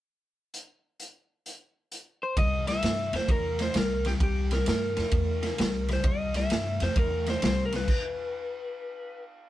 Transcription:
0.54 closed hi-hat medium
1.00 closed hi-hat soft
1.46 closed hi-hat soft
1.92 closed hi-hat medium
2.23 2.38 C5 medium
2.37 2.76 C2 medium
2.37 2.65 C3 medium
2.37 2.65 G3 medium
2.37 2.68 D#5 medium
2.37 kick loud
2.37 ride medium
2.67 2.82 C3 medium
2.67 2.82 G3 medium
2.67 3.15 E5 medium
2.67 snare soft
2.67 ride medium
2.83 3.09 G2 medium
2.83 3.11 C3 medium
2.83 3.11 A3 medium
2.83 snare loud
2.83 ride medium
3.13 3.26 F2 medium
3.13 3.28 C3 medium
3.13 3.28 A3 medium
3.13 3.29 C5 medium
3.13 snare soft
3.13 ride medium
3.28 3.67 E2 medium
3.28 3.57 C3 medium
3.28 3.57 A3 medium
3.28 3.62 A#4 medium
3.28 kick medium
3.28 ride medium
3.59 3.74 C3 medium
3.59 3.74 A3 medium
3.59 3.75 C5 medium
3.59 snare soft
3.59 ride medium
3.74 4.14 C2 medium
3.74 4.03 C3 medium
3.74 4.03 G3 medium
3.74 4.08 A#4 medium
3.74 snare medium
3.74 ride medium
4.05 4.19 C3 medium
4.05 4.20 G3 medium
4.05 4.12 G4 medium
4.05 snare soft
4.05 ride medium
4.20 4.59 C2 medium
4.20 4.48 C3 medium
4.20 4.49 G3 medium
4.20 4.53 G4 medium
4.20 kick loud
4.20 ride medium
4.51 4.66 C3 medium
4.51 4.66 G3 medium
4.51 4.68 A#4 medium
4.51 snare soft
4.51 ride medium
4.66 4.93 G2 medium
4.66 4.94 C3 medium
4.66 4.95 A3 medium
4.66 5.93 A#4 medium
4.66 snare loud
4.66 ride medium
4.97 5.11 F2 medium
4.97 5.11 C3 medium
4.97 5.11 A3 medium
4.97 snare soft
4.97 ride medium
5.12 5.51 E2 medium
5.12 5.40 C3 medium
5.12 5.40 A3 medium
5.12 kick medium
5.12 ride medium
5.43 5.57 C3 medium
5.43 5.57 A3 medium
5.43 snare soft
5.43 ride soft
5.58 5.98 C2 medium
5.58 5.86 C3 medium
5.58 5.86 G3 medium
5.58 snare loud
5.58 ride medium
5.88 6.03 C3 medium
5.88 6.03 G3 medium
5.88 snare soft
5.88 ride soft
5.93 6.07 C5 medium
6.04 6.43 C2 medium
6.04 6.32 C3 medium
6.04 6.32 G3 medium
6.04 6.36 D#5 medium
6.04 kick loud
6.04 ride medium
6.34 6.49 C3 medium
6.34 6.49 G3 medium
6.34 6.83 E5 medium
6.34 snare soft
6.34 ride medium
6.50 6.76 G2 medium
6.50 6.78 C3 medium
6.50 6.79 A3 medium
6.50 snare medium
6.50 ride medium
6.80 6.94 F2 medium
6.80 6.96 C3 medium
6.80 6.96 A3 medium
6.80 6.98 C5 medium
6.80 snare soft
6.80 ride medium
6.96 7.35 E2 medium
6.96 7.24 C3 medium
6.96 7.24 A3 medium
6.96 7.29 A#4 medium
6.96 kick loud
6.96 ride medium
7.26 7.41 C3 medium
7.26 7.42 A3 medium
7.26 7.44 C5 medium
7.26 snare soft
7.26 ride soft
7.42 7.81 C2 medium
7.42 7.70 C3 medium
7.42 7.70 G3 medium
7.42 7.64 C5 medium
7.42 snare loud
7.42 ride medium
7.66 7.74 A#4 medium
7.72 7.87 C3 medium
7.72 7.87 G3 medium
7.72 9.24 B4 medium
7.72 snare soft
7.72 ride medium
7.88 kick medium
7.88 crash medium

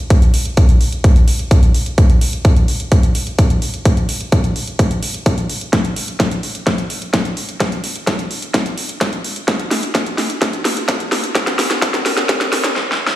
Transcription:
0.10 kick loud
0.10 closed hi-hat medium
0.22 closed hi-hat soft
0.34 open hi-hat loud
0.45 closed hi-hat soft
0.57 kick loud
0.57 closed hi-hat medium
0.69 closed hi-hat soft
0.81 open hi-hat medium
0.92 closed hi-hat soft
1.04 kick loud
1.04 closed hi-hat medium
1.16 closed hi-hat soft
1.28 open hi-hat loud
1.39 closed hi-hat soft
1.51 kick loud
1.51 closed hi-hat medium
1.63 closed hi-hat soft
1.74 open hi-hat medium
1.86 closed hi-hat soft
1.98 kick loud
1.98 closed hi-hat medium
2.10 closed hi-hat soft
2.21 open hi-hat loud
2.33 closed hi-hat soft
2.45 kick loud
2.45 closed hi-hat medium
2.57 closed hi-hat soft
2.68 open hi-hat medium
2.80 closed hi-hat soft
2.92 kick loud
2.92 closed hi-hat medium
3.03 closed hi-hat soft
3.15 open hi-hat loud
3.27 closed hi-hat soft
3.39 kick loud
3.39 closed hi-hat medium
3.50 closed hi-hat soft
3.62 open hi-hat medium
3.74 closed hi-hat soft
3.85 kick loud
3.85 closed hi-hat medium
3.97 closed hi-hat soft
4.09 open hi-hat loud
4.21 closed hi-hat soft
4.32 kick loud
4.32 closed hi-hat medium
4.44 closed hi-hat soft
4.56 open hi-hat medium
4.67 closed hi-hat soft
4.79 kick loud
4.79 closed hi-hat medium
4.91 closed hi-hat soft
5.03 open hi-hat loud
5.14 closed hi-hat soft
5.26 kick loud
5.26 closed hi-hat medium
5.38 closed hi-hat soft
5.49 open hi-hat loud
5.61 closed hi-hat soft
5.73 kick loud
5.73 snare soft
5.73 closed hi-hat medium
5.85 closed hi-hat soft
5.96 open hi-hat loud
6.08 closed hi-hat soft
6.20 kick loud
6.20 snare soft
6.20 closed hi-hat medium
6.31 closed hi-hat soft
6.43 open hi-hat medium
6.55 closed hi-hat soft
6.67 kick loud
6.67 snare medium
6.67 closed hi-hat medium
6.78 closed hi-hat soft
6.90 open hi-hat loud
7.02 closed hi-hat soft
7.14 kick loud
7.14 snare medium
7.14 closed hi-hat medium
7.25 closed hi-hat soft
7.37 open hi-hat medium
7.49 closed hi-hat soft
7.60 kick loud
7.60 snare medium
7.60 closed hi-hat medium
7.72 closed hi-hat soft
7.84 open hi-hat loud
7.95 closed hi-hat soft
8.07 kick loud
8.07 snare medium
8.07 closed hi-hat medium
8.19 closed hi-hat soft
8.31 open hi-hat medium
8.42 closed hi-hat soft
8.54 kick loud
8.54 snare medium
8.54 closed hi-hat medium
8.66 closed hi-hat soft
8.78 open hi-hat loud
8.89 closed hi-hat soft
9.01 kick loud
9.01 snare medium
9.01 closed hi-hat medium
9.13 closed hi-hat soft
9.24 open hi-hat medium
9.36 closed hi-hat soft
9.48 kick loud
9.48 snare medium
9.48 closed hi-hat medium
9.60 closed hi-hat soft
9.71 snare medium
9.71 open hi-hat loud
9.83 closed hi-hat soft
9.95 kick loud
9.95 snare medium
9.95 closed hi-hat medium
10.06 closed hi-hat soft
10.18 snare medium
10.18 open hi-hat medium
10.30 closed hi-hat soft
10.42 kick loud
10.42 snare medium
10.42 closed hi-hat medium
10.53 closed hi-hat soft
10.65 snare medium
10.65 open hi-hat loud
10.77 closed hi-hat soft
10.88 kick loud
10.88 snare medium
10.88 closed hi-hat medium
11.00 closed hi-hat soft
11.12 snare medium
11.12 open hi-hat medium
11.24 closed hi-hat soft
11.35 kick loud
11.35 snare medium
11.35 closed hi-hat medium
11.47 snare medium
11.47 closed hi-hat soft
11.59 snare loud
11.59 open hi-hat loud
11.71 snare medium
11.71 closed hi-hat soft
11.82 kick loud
11.82 snare medium
11.82 closed hi-hat medium
11.94 snare medium
11.94 closed hi-hat soft
12.06 snare loud
12.06 open hi-hat medium
12.17 snare medium
12.17 closed hi-hat soft
12.29 kick loud
12.29 snare loud
12.29 closed hi-hat medium
12.41 snare medium
12.41 closed hi-hat soft
12.53 snare loud
12.53 open hi-hat loud
12.64 snare medium
12.64 closed hi-hat soft
12.76 snare medium
12.92 snare medium
13.07 snare loud

